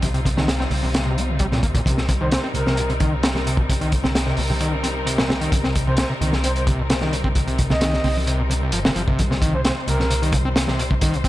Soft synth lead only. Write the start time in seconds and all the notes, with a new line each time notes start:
2.21 C5
2.32 C5
2.55 A#4
5.87 C5
5.98 C5
6.44 C5
6.56 C5
7.71 D#5
9.54 C5
9.65 C5
9.88 A#4